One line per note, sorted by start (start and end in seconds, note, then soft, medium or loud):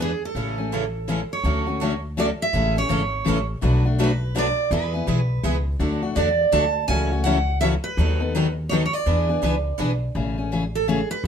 0.00 0.13 E2 medium
0.00 0.10 E3 medium
0.00 0.11 B3 medium
0.00 0.10 D4 medium
0.00 0.10 G#4 medium
0.00 0.22 G#4 medium
0.00 0.11 B4 medium
0.25 1.28 A4 medium
0.35 1.22 A1 medium
0.35 0.56 C#3 medium
0.35 0.56 E3 medium
0.35 0.57 G#3 medium
0.35 0.56 A3 soft
0.35 0.57 C#4 medium
0.35 0.57 E4 medium
0.35 0.57 G#4 medium
0.35 0.57 A4 medium
0.58 0.72 A3 soft
0.58 0.71 C#4 soft
0.58 0.71 G#4 medium
0.72 0.83 C#3 medium
0.72 0.83 E3 medium
0.72 0.83 G#3 medium
0.72 0.83 A3 medium
0.72 0.84 C#4 medium
0.72 0.84 E4 medium
0.72 0.84 G#4 medium
0.72 0.84 A4 medium
1.08 1.19 C#3 medium
1.08 1.19 E3 medium
1.08 1.19 G#3 medium
1.08 1.19 A3 medium
1.08 1.20 C#4 medium
1.08 1.20 E4 medium
1.08 1.20 G#4 medium
1.08 1.20 A4 medium
1.33 2.00 C#5 medium
1.44 2.31 D2 medium
1.44 1.66 D3 medium
1.44 1.66 F#3 medium
1.44 1.66 A3 medium
1.44 1.66 C#4 medium
1.44 1.65 F#4 medium
1.44 1.66 A4 medium
1.67 1.81 A3 soft
1.67 1.80 C#4 medium
1.67 1.80 F#4 medium
1.81 1.92 D3 medium
1.81 1.92 F#3 medium
1.81 1.93 A3 medium
1.81 1.93 C#4 medium
1.81 1.93 F#4 medium
1.81 1.92 A4 medium
2.17 2.28 D3 medium
2.17 2.28 F#3 medium
2.17 2.29 A3 loud
2.17 2.29 C#4 medium
2.17 2.29 F#4 medium
2.17 2.29 A4 medium
2.17 2.25 D5 medium
2.42 2.78 E5 loud
2.53 2.82 A1 medium
2.53 2.74 C#3 medium
2.53 2.75 E3 medium
2.53 2.75 G#3 medium
2.53 2.75 A3 medium
2.53 2.75 C#4 medium
2.53 2.75 E4 medium
2.53 2.74 G#4 medium
2.53 2.75 A4 medium
2.75 2.88 A3 soft
2.75 2.88 C#4 medium
2.75 2.89 G#4 medium
2.75 3.46 C#5 medium
2.89 3.20 G#1 medium
2.89 3.00 C#3 medium
2.89 3.01 E3 medium
2.89 3.01 G#3 medium
2.89 3.01 A3 medium
2.89 3.01 C#4 medium
2.89 3.01 E4 medium
2.89 3.01 G#4 medium
2.89 3.01 A4 loud
3.25 3.57 A1 medium
3.25 3.36 C#3 medium
3.25 3.37 E3 medium
3.25 3.38 G#3 medium
3.25 3.37 A3 medium
3.25 3.37 C#4 medium
3.25 3.38 E4 medium
3.25 3.37 G#4 loud
3.25 3.38 A4 medium
3.61 4.49 B1 medium
3.61 3.83 B2 medium
3.61 3.83 F#3 medium
3.61 3.83 A3 medium
3.61 3.84 D4 medium
3.61 3.84 F#4 medium
3.61 3.84 B4 medium
3.85 3.98 A3 soft
3.85 3.98 D4 medium
3.85 3.98 F#4 medium
3.99 4.10 B2 medium
3.99 4.10 F#3 medium
3.99 4.10 A3 loud
3.99 4.10 D4 medium
3.99 4.10 F#4 loud
3.99 4.11 B4 medium
4.04 4.38 B4 medium
4.35 4.46 B2 medium
4.35 4.46 F#3 medium
4.35 4.46 A3 medium
4.35 4.46 D4 medium
4.35 4.47 F#4 medium
4.35 4.47 B4 medium
4.35 4.72 D5 medium
4.71 5.00 E2 medium
4.71 4.92 E3 medium
4.71 4.92 G#3 medium
4.71 4.92 B3 medium
4.71 4.93 E4 medium
4.71 4.93 G#4 medium
4.71 5.63 B4 medium
4.94 5.06 B3 soft
4.94 5.07 E4 medium
4.94 5.07 G#4 medium
5.07 5.38 B1 medium
5.07 5.19 E3 medium
5.07 5.19 G#3 medium
5.07 5.19 B3 medium
5.07 5.19 E4 medium
5.07 5.19 G#4 medium
5.43 5.75 C#2 medium
5.43 5.55 E3 medium
5.43 5.55 G#3 medium
5.43 5.55 B3 medium
5.43 5.55 E4 medium
5.43 5.55 G#4 medium
5.79 6.09 D2 medium
5.79 6.01 D3 medium
5.79 6.01 F#3 medium
5.79 6.01 A3 medium
5.79 6.01 D4 medium
5.79 6.01 F#4 medium
5.79 6.02 A4 medium
6.03 6.15 A3 soft
6.03 6.15 D4 soft
6.03 6.15 F#4 medium
6.15 6.47 E2 medium
6.15 6.27 D3 medium
6.15 6.27 F#3 medium
6.15 6.27 A3 medium
6.15 6.27 D4 medium
6.15 6.28 F#4 medium
6.15 6.28 A4 medium
6.15 6.54 D5 medium
6.52 6.83 D2 medium
6.52 6.63 D3 medium
6.52 6.64 F#3 medium
6.52 6.64 A3 medium
6.52 6.64 D4 medium
6.52 6.64 F#4 loud
6.52 6.64 A4 medium
6.52 6.87 A5 medium
6.88 7.76 C#2 medium
6.88 7.10 C#3 medium
6.88 7.10 E3 medium
6.88 7.10 F#3 medium
6.88 7.10 A3 medium
6.88 7.11 C#4 medium
6.88 7.10 E4 medium
6.88 7.11 F#4 medium
6.88 7.11 A4 medium
6.88 7.23 G#5 medium
7.12 7.25 A3 soft
7.12 7.25 C#4 medium
7.12 7.25 F#4 medium
7.24 7.37 C#3 medium
7.24 7.37 E3 medium
7.24 7.36 F#3 medium
7.24 7.37 A3 medium
7.24 7.37 C#4 medium
7.24 7.37 E4 medium
7.24 7.37 F#4 medium
7.24 7.37 A4 medium
7.24 7.60 F#5 medium
7.61 7.73 C#3 medium
7.61 7.73 E3 medium
7.61 7.72 F#3 medium
7.61 7.73 A3 medium
7.61 7.74 C#4 medium
7.61 7.73 E4 medium
7.61 7.74 F#4 medium
7.61 7.73 A4 loud
7.61 7.67 E5 medium
7.84 8.53 B4 medium
7.97 8.85 D#2 medium
7.97 8.19 D#3 medium
7.97 8.19 F#3 medium
7.97 8.20 B3 medium
7.97 8.19 D#4 medium
7.97 8.19 A4 medium
8.20 8.34 B3 medium
8.20 8.34 D#4 medium
8.20 8.33 A4 medium
8.35 8.46 D#3 medium
8.35 8.46 F#3 medium
8.35 8.46 B3 medium
8.35 8.46 D#4 loud
8.35 8.46 A4 medium
8.69 8.82 D#3 medium
8.69 8.82 F#3 medium
8.69 8.83 B3 medium
8.69 8.83 D#4 medium
8.69 8.83 A4 medium
8.69 8.74 C#5 medium
8.86 8.93 C#5 medium
8.93 9.79 D5 medium
9.06 9.35 E2 medium
9.06 9.28 E3 medium
9.06 9.28 B3 medium
9.06 9.29 D4 medium
9.06 9.28 G#4 medium
9.06 9.28 B4 medium
9.29 9.42 B3 medium
9.29 9.43 D4 medium
9.29 9.42 G#4 medium
9.42 9.73 C#2 medium
9.42 9.54 E3 medium
9.42 9.54 B3 medium
9.42 9.55 D4 medium
9.42 9.55 G#4 medium
9.42 9.54 B4 loud
9.79 10.10 B1 medium
9.79 9.90 E3 medium
9.79 9.91 B3 medium
9.79 9.91 D4 medium
9.79 9.91 G#4 medium
9.79 9.90 B4 medium
10.15 11.02 A1 medium
10.15 10.36 C#3 medium
10.15 10.37 E3 medium
10.15 10.37 A3 medium
10.15 10.37 C#4 medium
10.15 10.36 G#4 medium
10.38 10.51 A3 soft
10.38 10.51 C#4 soft
10.38 10.51 G#4 medium
10.52 10.63 C#3 medium
10.52 10.63 E3 medium
10.52 10.63 A3 medium
10.52 10.63 C#4 medium
10.52 10.64 G#4 medium
10.75 10.88 A4 medium
10.88 10.99 C#3 medium
10.88 10.99 E3 medium
10.88 10.99 A3 medium
10.88 11.00 C#4 medium
10.88 11.00 G#4 medium
10.88 11.10 G#4 medium
11.11 11.24 B4 medium
11.24 11.27 F#1 medium